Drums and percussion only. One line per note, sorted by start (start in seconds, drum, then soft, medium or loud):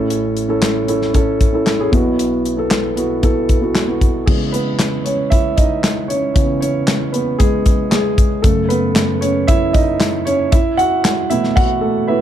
0.10 closed hi-hat medium
0.37 closed hi-hat medium
0.62 snare loud
0.62 clap medium
0.62 closed hi-hat medium
0.88 closed hi-hat medium
1.02 snare soft
1.14 kick medium
1.14 closed hi-hat medium
1.41 kick medium
1.41 closed hi-hat medium
1.67 snare medium
1.67 clap medium
1.67 closed hi-hat medium
1.93 kick medium
1.93 closed hi-hat medium
2.19 closed hi-hat medium
2.45 closed hi-hat medium
2.71 snare loud
2.71 clap medium
2.71 closed hi-hat medium
2.97 closed hi-hat medium
3.23 kick medium
3.23 closed hi-hat medium
3.49 kick medium
3.49 closed hi-hat medium
3.75 snare medium
3.75 clap medium
3.75 closed hi-hat medium
4.01 kick medium
4.01 closed hi-hat medium
4.27 kick loud
4.27 crash medium
4.54 closed hi-hat medium
4.79 snare loud
4.79 clap medium
4.79 closed hi-hat medium
5.06 closed hi-hat medium
5.32 kick medium
5.32 closed hi-hat medium
5.58 kick medium
5.58 closed hi-hat medium
5.84 snare medium
5.84 clap medium
5.84 closed hi-hat medium
6.10 closed hi-hat medium
6.36 kick loud
6.36 closed hi-hat medium
6.62 closed hi-hat medium
6.88 snare loud
6.88 clap medium
6.88 closed hi-hat medium
7.14 closed hi-hat medium
7.40 kick medium
7.40 closed hi-hat medium
7.66 kick medium
7.66 closed hi-hat medium
7.92 snare medium
7.92 clap medium
7.92 closed hi-hat medium
8.18 kick medium
8.18 closed hi-hat medium
8.44 kick loud
8.44 closed hi-hat medium
8.70 closed hi-hat medium
8.96 snare loud
8.96 clap medium
8.96 closed hi-hat medium
9.22 closed hi-hat medium
9.48 kick medium
9.48 closed hi-hat medium
9.74 kick medium
9.74 closed hi-hat medium
10.01 snare medium
10.01 clap medium
10.01 closed hi-hat medium
10.27 closed hi-hat medium
10.52 kick loud
10.52 closed hi-hat medium
10.79 closed hi-hat medium
11.05 snare loud
11.05 clap medium
11.05 closed hi-hat medium
11.31 closed hi-hat medium
11.44 snare soft
11.57 kick medium
11.57 crash medium